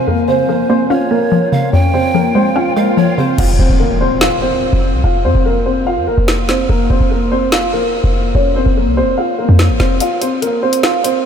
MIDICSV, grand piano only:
0, 0, Header, 1, 2, 480
1, 0, Start_track
1, 0, Key_signature, -4, "minor"
1, 0, Tempo, 413793
1, 86, Time_signature, 4, 2, 24, 8
1, 13057, End_track
2, 0, Start_track
2, 0, Title_t, "Grand piano"
2, 0, Program_c, 0, 0
2, 85, Note_on_c, 0, 70, 86
2, 94, Note_on_c, 0, 58, 66
2, 272, Note_off_c, 0, 70, 0
2, 278, Note_off_c, 0, 58, 0
2, 327, Note_on_c, 0, 72, 78
2, 336, Note_on_c, 0, 60, 61
2, 514, Note_off_c, 0, 72, 0
2, 519, Note_off_c, 0, 60, 0
2, 565, Note_on_c, 0, 70, 79
2, 575, Note_on_c, 0, 58, 61
2, 753, Note_off_c, 0, 70, 0
2, 758, Note_off_c, 0, 58, 0
2, 807, Note_on_c, 0, 72, 89
2, 816, Note_on_c, 0, 60, 69
2, 993, Note_off_c, 0, 72, 0
2, 999, Note_off_c, 0, 60, 0
2, 1042, Note_on_c, 0, 77, 79
2, 1052, Note_on_c, 0, 65, 67
2, 1231, Note_off_c, 0, 77, 0
2, 1237, Note_off_c, 0, 65, 0
2, 1288, Note_on_c, 0, 70, 80
2, 1297, Note_on_c, 0, 58, 67
2, 1964, Note_off_c, 0, 70, 0
2, 1969, Note_off_c, 0, 58, 0
2, 2006, Note_on_c, 0, 73, 80
2, 2015, Note_on_c, 0, 61, 64
2, 2193, Note_off_c, 0, 73, 0
2, 2198, Note_off_c, 0, 61, 0
2, 2247, Note_on_c, 0, 72, 86
2, 2257, Note_on_c, 0, 60, 66
2, 2434, Note_off_c, 0, 72, 0
2, 2440, Note_off_c, 0, 60, 0
2, 2488, Note_on_c, 0, 70, 77
2, 2497, Note_on_c, 0, 58, 61
2, 2674, Note_off_c, 0, 70, 0
2, 2680, Note_off_c, 0, 58, 0
2, 2726, Note_on_c, 0, 72, 92
2, 2736, Note_on_c, 0, 60, 64
2, 2913, Note_off_c, 0, 72, 0
2, 2919, Note_off_c, 0, 60, 0
2, 2964, Note_on_c, 0, 77, 89
2, 2974, Note_on_c, 0, 65, 71
2, 3152, Note_off_c, 0, 77, 0
2, 3158, Note_off_c, 0, 65, 0
2, 3205, Note_on_c, 0, 70, 79
2, 3214, Note_on_c, 0, 58, 59
2, 3656, Note_off_c, 0, 70, 0
2, 3662, Note_off_c, 0, 58, 0
2, 3688, Note_on_c, 0, 72, 75
2, 3697, Note_on_c, 0, 60, 63
2, 3874, Note_off_c, 0, 72, 0
2, 3880, Note_off_c, 0, 60, 0
2, 3933, Note_on_c, 0, 77, 87
2, 3942, Note_on_c, 0, 65, 71
2, 4117, Note_off_c, 0, 77, 0
2, 4123, Note_off_c, 0, 65, 0
2, 4167, Note_on_c, 0, 72, 81
2, 4176, Note_on_c, 0, 60, 68
2, 4354, Note_off_c, 0, 72, 0
2, 4359, Note_off_c, 0, 60, 0
2, 4403, Note_on_c, 0, 70, 84
2, 4412, Note_on_c, 0, 58, 61
2, 4591, Note_off_c, 0, 70, 0
2, 4597, Note_off_c, 0, 58, 0
2, 4650, Note_on_c, 0, 72, 92
2, 4658, Note_on_c, 0, 60, 70
2, 4835, Note_off_c, 0, 72, 0
2, 4840, Note_off_c, 0, 60, 0
2, 4886, Note_on_c, 0, 77, 88
2, 4896, Note_on_c, 0, 65, 67
2, 5073, Note_off_c, 0, 77, 0
2, 5079, Note_off_c, 0, 65, 0
2, 5127, Note_on_c, 0, 72, 84
2, 5136, Note_on_c, 0, 60, 66
2, 5803, Note_off_c, 0, 72, 0
2, 5808, Note_off_c, 0, 60, 0
2, 5846, Note_on_c, 0, 77, 78
2, 5856, Note_on_c, 0, 65, 54
2, 6033, Note_off_c, 0, 77, 0
2, 6039, Note_off_c, 0, 65, 0
2, 6088, Note_on_c, 0, 72, 86
2, 6097, Note_on_c, 0, 60, 68
2, 6274, Note_off_c, 0, 72, 0
2, 6280, Note_off_c, 0, 60, 0
2, 6329, Note_on_c, 0, 70, 83
2, 6338, Note_on_c, 0, 58, 58
2, 6515, Note_off_c, 0, 70, 0
2, 6521, Note_off_c, 0, 58, 0
2, 6565, Note_on_c, 0, 72, 81
2, 6574, Note_on_c, 0, 60, 62
2, 6752, Note_off_c, 0, 72, 0
2, 6758, Note_off_c, 0, 60, 0
2, 6805, Note_on_c, 0, 77, 87
2, 6814, Note_on_c, 0, 65, 67
2, 6993, Note_off_c, 0, 77, 0
2, 6998, Note_off_c, 0, 65, 0
2, 7044, Note_on_c, 0, 70, 84
2, 7053, Note_on_c, 0, 58, 62
2, 7496, Note_off_c, 0, 70, 0
2, 7501, Note_off_c, 0, 58, 0
2, 7527, Note_on_c, 0, 72, 73
2, 7537, Note_on_c, 0, 60, 60
2, 7714, Note_off_c, 0, 72, 0
2, 7720, Note_off_c, 0, 60, 0
2, 7763, Note_on_c, 0, 70, 89
2, 7773, Note_on_c, 0, 58, 68
2, 7951, Note_off_c, 0, 70, 0
2, 7957, Note_off_c, 0, 58, 0
2, 8007, Note_on_c, 0, 72, 82
2, 8017, Note_on_c, 0, 60, 64
2, 8194, Note_off_c, 0, 72, 0
2, 8200, Note_off_c, 0, 60, 0
2, 8247, Note_on_c, 0, 70, 81
2, 8257, Note_on_c, 0, 58, 62
2, 8434, Note_off_c, 0, 70, 0
2, 8440, Note_off_c, 0, 58, 0
2, 8487, Note_on_c, 0, 72, 92
2, 8495, Note_on_c, 0, 60, 72
2, 8673, Note_off_c, 0, 72, 0
2, 8679, Note_off_c, 0, 60, 0
2, 8724, Note_on_c, 0, 77, 86
2, 8733, Note_on_c, 0, 65, 69
2, 8912, Note_off_c, 0, 77, 0
2, 8918, Note_off_c, 0, 65, 0
2, 8969, Note_on_c, 0, 70, 83
2, 8977, Note_on_c, 0, 58, 68
2, 9644, Note_off_c, 0, 70, 0
2, 9649, Note_off_c, 0, 58, 0
2, 9687, Note_on_c, 0, 73, 80
2, 9696, Note_on_c, 0, 61, 65
2, 9874, Note_off_c, 0, 73, 0
2, 9879, Note_off_c, 0, 61, 0
2, 9930, Note_on_c, 0, 72, 83
2, 9940, Note_on_c, 0, 60, 68
2, 10115, Note_off_c, 0, 72, 0
2, 10122, Note_off_c, 0, 60, 0
2, 10170, Note_on_c, 0, 70, 76
2, 10179, Note_on_c, 0, 58, 64
2, 10356, Note_off_c, 0, 70, 0
2, 10361, Note_off_c, 0, 58, 0
2, 10408, Note_on_c, 0, 72, 93
2, 10417, Note_on_c, 0, 60, 65
2, 10594, Note_off_c, 0, 72, 0
2, 10600, Note_off_c, 0, 60, 0
2, 10645, Note_on_c, 0, 77, 85
2, 10653, Note_on_c, 0, 65, 66
2, 10832, Note_off_c, 0, 77, 0
2, 10838, Note_off_c, 0, 65, 0
2, 10885, Note_on_c, 0, 70, 77
2, 10895, Note_on_c, 0, 58, 59
2, 11337, Note_off_c, 0, 70, 0
2, 11342, Note_off_c, 0, 58, 0
2, 11369, Note_on_c, 0, 72, 73
2, 11377, Note_on_c, 0, 60, 63
2, 11555, Note_off_c, 0, 72, 0
2, 11560, Note_off_c, 0, 60, 0
2, 11614, Note_on_c, 0, 77, 84
2, 11624, Note_on_c, 0, 65, 71
2, 11798, Note_off_c, 0, 77, 0
2, 11804, Note_off_c, 0, 65, 0
2, 11848, Note_on_c, 0, 72, 79
2, 11856, Note_on_c, 0, 60, 65
2, 12034, Note_off_c, 0, 72, 0
2, 12039, Note_off_c, 0, 60, 0
2, 12084, Note_on_c, 0, 70, 84
2, 12094, Note_on_c, 0, 58, 62
2, 12272, Note_off_c, 0, 70, 0
2, 12278, Note_off_c, 0, 58, 0
2, 12329, Note_on_c, 0, 72, 90
2, 12338, Note_on_c, 0, 60, 72
2, 12515, Note_off_c, 0, 72, 0
2, 12520, Note_off_c, 0, 60, 0
2, 12568, Note_on_c, 0, 77, 86
2, 12576, Note_on_c, 0, 65, 70
2, 12754, Note_off_c, 0, 77, 0
2, 12759, Note_off_c, 0, 65, 0
2, 12805, Note_on_c, 0, 72, 83
2, 12815, Note_on_c, 0, 60, 67
2, 13057, Note_off_c, 0, 60, 0
2, 13057, Note_off_c, 0, 72, 0
2, 13057, End_track
0, 0, End_of_file